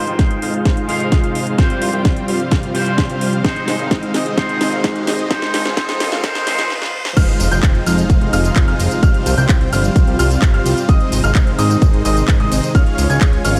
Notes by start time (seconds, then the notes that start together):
Already playing: C3 G#3 D#4 F4 C5, riser
0.07 F1 G#3 D#4 F4 C5 G5, closed hi-hat
0.19 F1, kick, snare, closed hi-hat
0.31 closed hi-hat
0.42 F2 G#3 D#4 F4 C5 F5, open hi-hat
0.54 closed hi-hat
0.65 F1, kick, snare, closed hi-hat
0.77 closed hi-hat
0.87 F1 G#3 D#4 F4 C5 F5, open hi-hat
1.00 closed hi-hat
1.12 F2, kick, snare, closed hi-hat
1.24 G#3 D#4 F4 C5 F5, closed hi-hat
1.35 F1, open hi-hat
1.47 closed hi-hat
1.57 C2 C3 F3 G3 C4 F4 C5 F5, kick, snare, closed hi-hat
1.70 closed hi-hat
1.82 C2, open hi-hat
1.93 C2 G3 C4 F4 C5 G5, closed hi-hat
2.05 kick, snare, closed hi-hat
2.17 closed hi-hat
2.28 G1 G3 C4 F4 C5 F5, open hi-hat
2.40 closed hi-hat
2.51 C2, kick, snare, closed hi-hat
2.63 C2, closed hi-hat
2.73 C2 C3 G3 C4 F4 C5 F5, open hi-hat
2.86 closed hi-hat
2.98 kick, snare, closed hi-hat
3.10 G3 C4 F4 C5 F5, closed hi-hat
3.21 C2, open hi-hat
3.33 closed hi-hat
3.43 G#1 G#2 C3 D#3 G#3 C4 D#4 C5 D#5, kick, snare, closed hi-hat
3.56 closed hi-hat
3.68 G#1, snare, open hi-hat
3.79 G#1 G#3 C4 D#4 C5 F5, closed hi-hat
3.91 kick, snare, closed hi-hat
4.03 closed hi-hat
4.14 G#2 G#3 C4 D#4 C5 D#5, snare, open hi-hat
4.26 closed hi-hat
4.36 G#2 G#3 C4 D#4 C5 D#5, kick, snare, closed hi-hat
4.49 G#1, closed hi-hat
4.61 G#1, snare, open hi-hat
4.72 G#3 C4 D#4 C5 F5, closed hi-hat
4.84 G#2, kick, snare, closed hi-hat
4.96 closed hi-hat
5.07 G#1 G#3 C4 D#4 C5 D#5, snare, open hi-hat
5.19 closed hi-hat
5.29 C#2 G#2 C#3 F3 G#3 C4 D#4 F4 C5 D#5, kick, snare, closed hi-hat
5.42 snare, closed hi-hat
5.54 C#2, snare, open hi-hat
5.65 C#2 G#3 C4 D#4 C5 F5, snare, closed hi-hat
5.76 G#2 G#3 C4 D#4 C5 D#5, kick, snare, closed hi-hat
5.89 snare, closed hi-hat
6.00 snare, open hi-hat
6.12 G#3 C4 D#4 C5 F5, snare, closed hi-hat
6.22 C#2 G#2 G#3 C4 D#4 C5 D#5, kick, snare, closed hi-hat, swell
6.35 C#2, snare, closed hi-hat
6.46 C#2 G#2 G#3 C4 D#4 C5 D#5, snare, open hi-hat
6.59 snare, closed hi-hat
6.70 snare
6.82 snare
7.05 snare
7.17 F1 C3 F3 G#3 D#4 F4 C5 F5 F6, kick, closed hi-hat, crash, tambourine, impact
7.28 closed hi-hat
7.40 F1, open hi-hat, ride, tambourine
7.51 F1 G#3 D#4 F4 C5 G5 G6, closed hi-hat, tambourine
7.63 kick, clap, closed hi-hat, tambourine
7.75 closed hi-hat
7.86 F2 G#3 D#4 F4 C5 F5 F6, open hi-hat, ride, tambourine
7.98 closed hi-hat, tambourine
8.10 F1, kick, closed hi-hat, tambourine
8.21 F1, closed hi-hat
8.33 F1 G#3 D#4 F4 C5 F5 F6, open hi-hat, ride, tambourine
8.45 closed hi-hat, tambourine
8.56 F2, kick, clap, closed hi-hat, tambourine
8.68 G#3 D#4 F4 C5 F5 F6, closed hi-hat
8.79 F1, open hi-hat, ride, tambourine
8.91 closed hi-hat, tambourine
9.03 C2 G3 C4 F4 C5 F5 F6, kick, closed hi-hat, tambourine
9.14 closed hi-hat
9.26 C2, open hi-hat, ride, tambourine
9.38 C2 G3 C4 F4 C5 G5 G6, closed hi-hat, tambourine
9.49 kick, clap, closed hi-hat, tambourine
9.61 closed hi-hat
9.72 G1 G3 C4 F4 C5 F5 F6, open hi-hat, ride, tambourine
9.84 closed hi-hat, tambourine
9.96 C2, kick, closed hi-hat, tambourine
10.07 C2, closed hi-hat
10.19 C2 G3 C4 F4 C5 F5 F6, open hi-hat, ride, tambourine
10.31 closed hi-hat, tambourine
10.42 G1, kick, clap, closed hi-hat, tambourine
10.54 G3 C4 F4 C5 F5 F6, closed hi-hat
10.65 C2, open hi-hat, ride, tambourine
10.77 closed hi-hat, tambourine
10.89 G#1 D#3 G#3 C4 D#4 C5 D#5 D#6, kick, closed hi-hat, tambourine
11.00 closed hi-hat
11.12 G#1, open hi-hat, ride, tambourine
11.24 G#1 G#3 C4 D#4 C5 F5 F6, closed hi-hat, tambourine
11.35 kick, clap, closed hi-hat, tambourine
11.47 closed hi-hat
11.58 G#2 G#3 C4 D#4 C5 D#5 D#6, open hi-hat, ride, tambourine
11.70 closed hi-hat, tambourine
11.82 G#1, kick, closed hi-hat, tambourine
11.93 G#1, closed hi-hat
12.05 G#1 G#3 C4 D#4 C5 D#5 D#6, open hi-hat, ride, tambourine
12.17 closed hi-hat, tambourine
12.28 G#2, kick, clap, closed hi-hat, tambourine
12.40 G#3 C4 D#4 C5 D#5 D#6, closed hi-hat
12.52 G#1, open hi-hat, ride, tambourine
12.63 closed hi-hat, tambourine
12.75 C#2 C#3 F3 G#3 C#4 F4 C#5 F5 F6, kick, closed hi-hat, tambourine
12.87 closed hi-hat
12.98 C#2, open hi-hat, ride, tambourine
13.10 C#2 G#3 C#4 F4 C#5 G#5 G#6, closed hi-hat, tambourine
13.21 kick, clap, closed hi-hat, tambourine
13.33 closed hi-hat
13.45 G#1 G#3 C#4 F4 C#5 F5 F6, open hi-hat, ride, tambourine
13.56 closed hi-hat